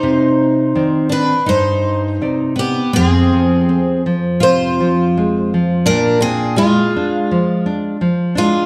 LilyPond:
<<
  \new Staff \with { instrumentName = "Twelve-string acoustic guitar" } { \time 4/4 \key c \minor \tempo 4 = 83 c''4. b'8 c''4. g'8 | \key bes \dorian aes'4. r8 c''2 | bes'8 aes'8 f'2 r8 f'8 | }
  \new Staff \with { instrumentName = "Twelve-string acoustic guitar" } { \time 4/4 \key c \minor ees'4. d'8 ees'4. b8 | \key bes \dorian c'4. r8 f'2 | d'8 c'8 aes2 r8 aes8 | }
  \new Staff \with { instrumentName = "Nylon-string guitar" } { \clef bass \time 4/4 \key c \minor c4 <ees c' d''>4 g,4 <c ees' d''>4 | \key bes \dorian f,8 f8 c'8 f8 c8 f8 aes8 f8 | bes,8 d'8 bes,8 d'8 f8 d'8 f8 d'8 | }
>>